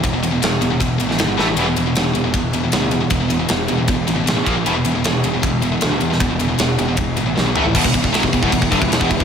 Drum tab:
CC |----------------|----------------|----------------|----------------|
RD |x-x-x-x-x-x-x---|x-x-x-x-x-x-x-x-|x-x-x-x-x-x-x-x-|x-x-x-x-x-x-x-x-|
SD |----o------oo-o-|----o-------o---|----o-------o---|----o-------o--o|
FT |----------------|----------------|----------------|----------------|
BD |o-------o-------|--------o-------|o-------o-----o-|--------o-------|

CC |----------------|x-x-x-x-x-x-x-x-|
RD |x-x-x-x-x-x-----|----------------|
SD |----o-------o---|----o-------o---|
FT |--------------o-|----------------|
BD |o-------o-------|oooo-ooooooo-ooo|